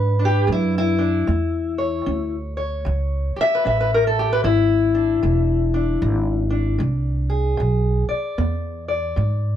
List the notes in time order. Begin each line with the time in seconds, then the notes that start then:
Already playing: G#2 B2 D4 B4
0.19 D4
0.25 G4
0.47 F#2 G#3
0.52 E4
0.78 E4
0.99 D4
1.27 E2 A3
1.78 C#5
2.06 D2 C#4
2.57 C#5
2.85 C#2 E3
3.36 G4, muted upright bass stroke
3.41 E5
3.55 B4
3.65 A1 C#4 E5
3.80 B4
3.94 A#4
4.07 A4
4.19 G4
4.33 B4
4.44 G#1 E3 E4
4.95 D4
5.23 E1 G#3
5.74 D4
6.02 G#1 B2
6.50 D4
6.79 C2 G#3
7.30 G#4
7.57 B1 G#2
8.09 D5, muted upright bass stroke
8.38 E2 B3
8.88 D5
9.16 G#2